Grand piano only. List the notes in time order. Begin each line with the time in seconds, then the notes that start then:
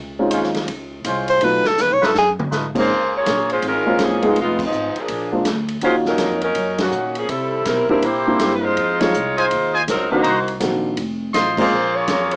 0.19 G#3 C4 C#4 D#4 F4
1.42 F#3 A3 B3 D#4 F4
2.75 G#3 A#3 C4 C#4 D#4
3.86 G#3 A#3 C4 C#4 F4
4.22 G#3 B3 D#4 F4 G#4
5.32 G#3 A#3 C4 D4 F4
5.83 A#3 C#4 D#4 F4 F#4
7.89 G3 A#3 C4 D4 E4
8.27 G3 A#3 C4 D4 E4
9.00 F3 G#3 C4 D#4 F4
10.12 D#3 A#3 C4 D4 F#4
10.60 D#3 A#3 C4 D4 F#4
11.58 G#3 A#3 C4 C#4 F4